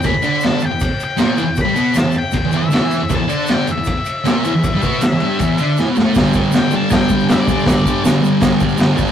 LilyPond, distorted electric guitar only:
\new Staff \with { instrumentName = "Distorted electric guitar" } { \clef bass \time 4/4 \key e \minor \tempo 4 = 158 <e, e>16 e,16 <d d'>4 e,16 e,8 r8. <ais, ais>8 <e, e>16 e,16~ | e,16 <g, g>16 <b, b>8 e,16 e,8 r16 e,16 e,16 <e, e>16 r16 <d d'>16 <e e'>8 e,16 | <e, e>16 e,16 <d d'>4 e,16 e,8 r8. <ais, ais>8 <e, e>16 e,16~ | e,16 <g, g>16 <b, b>8 e,16 e,16 <g, g>8 <e, e>8 <d d'>8 <e e'>16 <b, b>16 <a, a>8 |
<g, d g>8 <g, d g>8 <g, d g>8 <g, d g>8 <g, d g>8 <g, d g>8 <g, d g>8 <g, d g>8 | <g, d g>8 <g, d g>8 <g, d g>8 <g, d g>8 <g, d g>8 <g, d g>8 <g, d g>8 <g, d g>8 | }